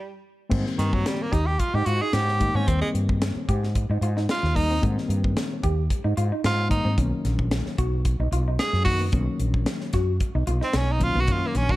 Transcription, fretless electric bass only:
0.52 G#2
0.78 G2
1.32 D#2
1.74 G#2
1.86 G#2
2.13 G#2
2.54 G#2
2.68 D#2
2.94 G2
3.36 muted fretless electric bass stroke
3.49 G#2
3.90 G#2
4.01 G#2
4.43 D#2
4.83 G#2
5.09 G2
5.63 D#2
6.04 G#2
6.17 G#2
6.44 G#2
6.85 G#2
6.98 B1
7.25 A#1
7.79 B1
8.20 B1
8.32 B1
8.73 F#2
9.13 B1
9.40 A#1
9.94 F#2
10.35 B1
10.47 B1
10.74 B1
11.15 B1
11.28 F#2
11.55 A#1

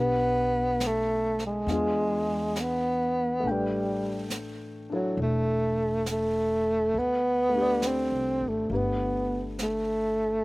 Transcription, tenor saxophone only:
0.00 B3
0.87 A3
1.46 G#3
2.61 B3
3.51 G3
4.94 F#3
5.22 A3
6.11 A3
6.99 B3
7.87 C4
8.49 A3
8.72 A#3 B3
9.62 A3

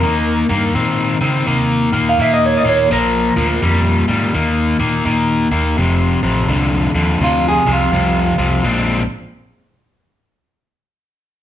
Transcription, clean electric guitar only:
Already playing: A#4
2.09 F5
2.22 E5
2.34 D#5
2.46 C#5
2.57 D#5
2.69 C#5
2.93 A#4
7.24 F4
7.48 G#4
7.73 F4

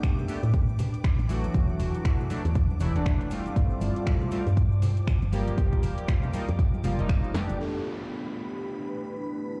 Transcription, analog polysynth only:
Already playing: A3 B3 D4 G4
0.28 A3 B3 D4 G4
1.28 E3 F#3 A3 F#4
2.30 E3 F#3 A3 D4
2.80 E3 F#3 A3 E4
2.95 E3 F#3 A3 D4
3.30 G3 A3 C4 F4
4.31 G3 A3 C4 F4
5.32 F3 G3 A#3 G4
6.33 F3 G3 A#3 D#4
6.83 F3 G3 A#3 F4
6.98 F3 G3 A#3 D#4
7.34 A3 B3 D4 G4
7.58 A3 B3 D4 G4

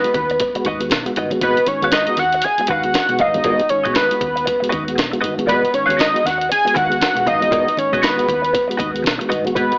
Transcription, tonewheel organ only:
0.04 G#3 B3 F#4
0.14 B3 F#4
0.54 G#3 B3 F#4
0.65 G#2 D#3
0.80 G#3 B3 F#4
1.05 G#3 B3 F#4
1.16 G#2 D#3
1.31 G#3 B3 F#4
1.42 G#3 B3 F#4
1.67 G#2 D#3
1.82 G#3 B3 F#4
1.92 G#2 D#3
2.08 G#3 B3 F#4
2.18 B3 F#4
2.59 G#3 B3 F#4
2.69 G#2 D#3
2.84 G#3 B3 F#4
3.09 G#3 B3 F#4
3.20 G#2 D#3
3.34 G#3 B3 F#4
3.44 G#3 B3 F#4
3.70 G#2 D#3
3.85 G#3 B3 F#4
3.96 G#2 D#3
4.11 G#3 B3 F#4
4.22 B3 F#4
4.62 G#3 B3 F#4
4.72 G#2 D#3
4.88 G#3 B3 F#4
5.13 G#3 B3 F#4
5.23 G#2 D#3
5.38 G#3 B3 F#4
5.48 G#3 B3 F#4
5.74 G#2 D#3
5.89 G#3 B3 F#4
6.00 G#2 D#3
6.14 G#3 B3 F#4
6.24 B3 F#4
6.65 G#3 B3 F#4
6.75 G#2 D#3
6.89 G#3 B3 F#4
7.15 G#3 B3 F#4
7.26 G#2 D#3
7.41 G#3 B3 F#4
7.51 G#3 B3 F#4
7.77 G#2 D#3
7.92 G#3 B3 F#4
8.02 G#2 D#3
8.17 G#3 B3 F#4
8.28 B3 F#4
8.69 G#3 B3 F#4
8.79 G#2 D#3
8.94 G#3 B3 F#4
9.20 G#3 B3 F#4
9.31 G#2 D#3
9.45 G#3 B3 F#4
9.56 G#3 B3 F#4

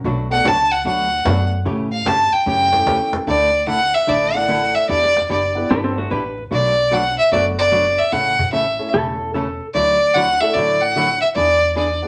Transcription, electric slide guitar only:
5.71 D4 B4
5.84 C4 A4
5.98 A3 F#4
6.11 B4
8.94 A4
9.34 A4

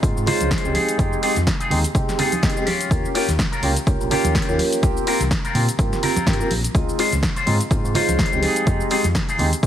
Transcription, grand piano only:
0.02 G#3 C4 D#4 F4
0.26 G#3 D#4 F4 C5
0.64 G#3 C4 D#4 G4
0.98 G#3 C4 D#4 G4
1.22 G#3 C4 D#4 G4
1.71 G#3 C4 D#4 G4
1.95 G#3 C4 D#4 G4
2.19 G#3 C4 D#4 G4
2.43 G#3 C4 D#4 G4
2.56 G#3 C4 D#4 G4
2.91 A#3 C#4 F4 G4
3.15 A#3 C#4 F4 G4
3.63 A#3 C#4 F4 G4
3.87 A#3 C#4 F4 G4
4.11 A#3 C#4 F4 G4
4.48 A#3 C#4 F4 G4
4.83 A#3 C4 F4 G4
5.07 A#3 C4 F4 G4
5.55 A#3 C4 F4 G4
5.79 A#3 C4 F4 G4
6.03 A#3 C4 F4 G4
6.27 A#3 C4 F4 G4
6.40 A#3 C4 F4 G4
6.75 G#3 C4 D#4 F4
6.99 G#3 C4 D#4 F4
7.46 G#3 C4 D#4 F4
7.70 G#3 C4 D#4 F4
7.95 G#3 D#4 F4 C5
8.32 G#3 C4 D#4 G4
8.66 G#3 C4 D#4 G4
8.90 G#3 C4 D#4 G4
9.39 G#3 C4 D#4 G4
9.63 G#3 C4 D#4 G4

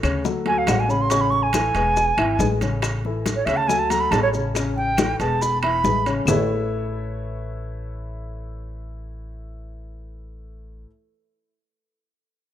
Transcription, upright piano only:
0.03 C#3 C#4 C#5
0.25 F#3 F#4 A4
0.45 F#3 F#4 A4
0.88 C#3 C#4 C#5
1.11 C#3 C#4 C#5
1.54 E3 E4 A4
1.75 G#3 G#4 B4
2.18 E3 E4 E5
2.40 G#3 G#4 B4
2.61 C#3 C#4 C#5
3.05 E3 E4 A4
3.48 C#3 C#4 C#5
3.68 F#3 F#4 A4
3.90 F#3 F#4 A4
4.33 C#3 C#4 C#5
4.55 C#3 C#4 C#5
4.99 E3 E4 A4
5.20 G#3 G#4 B4
5.63 E3 E4 E5
5.86 G#3 G#4 B4
6.06 C#3 C#4 C#5
6.28 A3 E4 A4 B4 C#5 E5

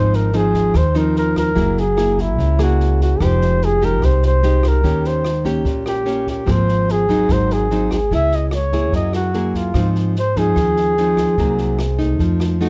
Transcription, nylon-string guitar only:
Already playing: G#2 F3 C4 D#4
0.34 F3 C4 D#4
0.74 D#3
0.94 F3 C4 D#4
1.55 F#3 A#3 E4 G#4
1.97 A#3 E4 G#4
2.39 C#3
2.59 A#3 E4 G#4
3.21 F3 G#3 D#4 G4
3.82 G#3 D#4 G4
4.02 C3
4.43 G#3 D#4 G4
4.84 D#3 A#3 C#4 G4
5.45 A#3 C#4 G4
5.65 A#2
6.06 A#3 C#4 G4
6.46 G#2 F3 A#3 C4
7.09 F#3 C4 D#4
7.30 G#2
7.71 F#3 C4 D#4
8.12 C#3 B3 E4 G#4
8.73 A#3 E4 G#4
8.93 F#3
9.34 A#3 E4 G#4
9.75 G#2 F3 C4 D#4
10.37 F3 C4 D#4
10.58 D#3
10.98 F3 C4 D#4
11.38 C3 F#3 A#3 D#4
11.98 A3 D#4
12.20 F3
12.61 A3 D#4 F#4

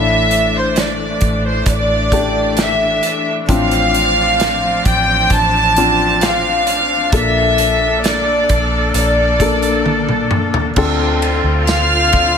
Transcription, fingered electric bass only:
Already playing: A1
1.21 A1
1.66 A1
3.48 A1
4.85 A1
5.30 A1
7.12 A#1
8.50 A#1
8.94 A#1
10.77 D2
11.44 D2

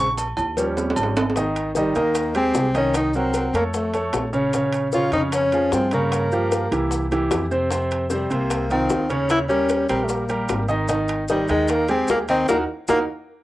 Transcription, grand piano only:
0.00 C#6
0.57 F3 G3 C#4
1.37 D#3 D#4 D#5
1.76 D#3 D#4 D#5
1.96 D#3 D#4 D#5
2.35 G#3 G4 G#4
2.74 D#3 D#4 D#5
3.15 F#3 F#4 A#4
3.54 A3 A4 C#5
3.93 A3 A4 C#5
4.33 C#3 C#4 C#5
4.54 C#3 C#4 C#5
4.93 C#3 C#4 C#5
5.14 C#3 C#4 C#5
5.53 F3 F4 G#4
5.93 C#3 C#4 C#5
6.32 F3 F4 G4
6.71 E3 E4 G4
7.12 E3 E4 G4
7.51 C3 C4 C5
7.71 C3 C4 C5
8.10 C3 C4 C5
8.30 C3 C4 C5
8.70 D#3 D#4 F4
9.10 C#3 C#4 C#5
9.49 G3 G4 A#4
9.89 G3 G4 A#4
10.29 G3 G4 A#4
10.68 D#3 D#4 D#5
10.89 D#3 D#4 D#5
11.29 D#3 D#4 D#5
11.49 D#3 D#4 D#5
11.89 G#3 G4 G#4
12.29 D#3 D#4 D#5
12.49 D#4 F#4 A#4
12.89 D#4 F#4 A#4

